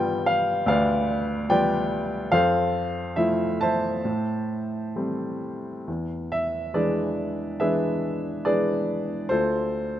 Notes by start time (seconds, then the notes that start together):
Already playing: G2 G3 B3 F4 G5
0.26 F5
0.66 D2 B4 D5 F5
1.49 G3 B3 F4 B4 D5 G5
2.32 F2 A4 C5 F5
3.16 F3 A3 E4 E5
3.61 C5 E5 A5
4.05 A2
4.96 G3 A3 C4
5.88 E2
6.32 E5
6.74 E3 G#3 D4 G#4 B4 D5
7.60 E3 G#3 D4 G#4 B4 E5
8.45 E3 G#3 D4 G#4 B4 D5
9.29 D2 F4 A4 C5